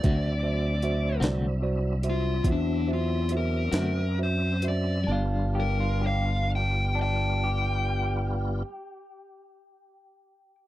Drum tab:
HH |x-xx-xx-xx-x|------------|
SD |---o-----o--|------------|
BD |o-----o-----|------------|